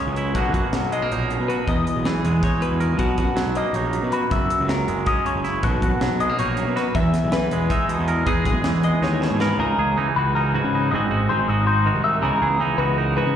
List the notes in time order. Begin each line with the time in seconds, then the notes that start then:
Already playing: F#2 C#3 F#3 G#3 C#4 C#5
0.07 C#2
0.16 E4, closed hi-hat
0.35 B1 B2 F#3 A#3 D#4 F#4, kick, closed hi-hat
0.54 F#2 F#4, kick, closed hi-hat
0.73 B1 F#3, snare, closed hi-hat
0.83 B1
0.92 G#3 D#5, closed hi-hat
1.02 A#3
1.11 A#1 D#4 C#5, closed hi-hat
1.30 F#2, closed hi-hat
1.40 B2
1.48 F#4 B4, closed hi-hat
1.68 E2 D#5, kick, closed hi-hat
1.87 closed hi-hat
1.96 B1
2.05 E3 G#4, snare, closed hi-hat
2.25 E2 G#3, closed hi-hat
2.43 D#4 C#5, kick, closed hi-hat
2.60 B2 B4, closed hi-hat
2.72 E2
2.80 A#4, closed hi-hat
2.98 B1 B2 F#4, kick, closed hi-hat
3.18 F#2 F#4, kick, closed hi-hat
3.36 B1 F#3, snare, closed hi-hat
3.46 B1
3.55 A#3 D#5, closed hi-hat
3.73 A#1 D#4 C#5, closed hi-hat
3.93 F#2, closed hi-hat
4.03 B2
4.12 F#4 B4, closed hi-hat
4.30 F#1 F#2 E5, kick, closed hi-hat
4.50 closed hi-hat
4.60 C#2
4.68 F#3 A#4, snare, closed hi-hat
4.88 F#1 G#3, closed hi-hat
5.06 C#4 D#5, kick, closed hi-hat
5.25 C#3 C#5, closed hi-hat
5.35 F#1
5.44 E4, snare, closed hi-hat
5.63 B1 B2 F#4, kick, closed hi-hat
5.82 F#2 F#4, kick, closed hi-hat
6.01 B1 F#3, snare, closed hi-hat
6.11 B1
6.20 G#3 D#5, closed hi-hat
6.29 A#3
6.39 A#1 D#4 C#5, closed hi-hat
6.57 F#2, closed hi-hat
6.67 B2
6.76 F#4 B4, snare, closed hi-hat
6.95 E2 E5, kick, closed hi-hat
7.14 snare, closed hi-hat
7.24 B1
7.32 E3 B4, snare, closed hi-hat
7.51 E2 G#3, closed hi-hat
7.70 D#4 E5, kick, closed hi-hat
7.89 B2 D#5, closed hi-hat
7.98 E2
8.08 A#4, closed hi-hat
8.26 E2 E3 G#3 D#4 G#4, kick, closed hi-hat
8.45 B1 G#4, kick, snare, closed hi-hat
8.64 E2 E3, snare, closed hi-hat
8.74 E2
8.83 G#3 D#5, closed hi-hat
9.02 D#2 D#4 C#5, snare
9.20 B2, snare
9.31 G#2
9.40 A#4 B4, snare
9.59 C#2 C#3 D#4 A#4
9.78 C#2 G#4
9.97 C#2 E3 D#4
10.16 C#2 F#4 B4
10.35 D#4 A#4
10.54 G#2 F#4 B4
10.64 C#3
10.75 D#4
10.91 G#1 G#2 G#3 C4 D#4 F#4 D#5
11.11 G#1 F#4
11.29 G#1 G#3 D#4 C5
11.48 G#1 F#4 D#5
11.67 D#4 C5
11.86 D#3 F#4
11.95 C2
12.04 D#4 E5
12.22 C#2 C#3 E3 B3 D#4 F#4 A#4
12.42 C#2 G#4
12.60 C#2 E3 D#4
12.78 C#2 F#4 B4
12.98 D#4 A#4
13.17 G#2 F#4 B4
13.27 C#3